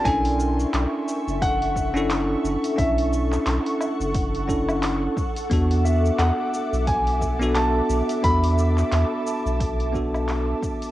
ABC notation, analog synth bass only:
X:1
M:4/4
L:1/16
Q:"Swing 16ths" 1/4=88
K:Emix
V:1 name="Analog synth bass" clef=bass
B,,,3 z B,,, z2 F,,,6 z F,,, z | B,,,3 z B,,, z2 F,,,6 z3 | E,,3 z E,, z2 B,,,6 z B,,, z | E,,3 z E,, z2 B,,,6 z3 |]